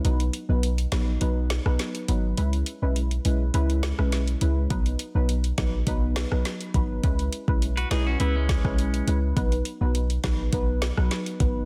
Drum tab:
HH |xxx-xxx-x-x-xxx-|xxx-xxx-xxx-xxx-|xxx-xxx-x-x-xxx-|xxx-xxx-x-x-xxx-|
SD |------o---oro---|----------oro---|------o---oro---|------o---or----|
BD |----------------|----------------|o-----o-o-----o-|o--o------oo----|

HH |xxx-xxx-x-x-xxx-|
SD |------o---oro---|
BD |o-----o-o-----o-|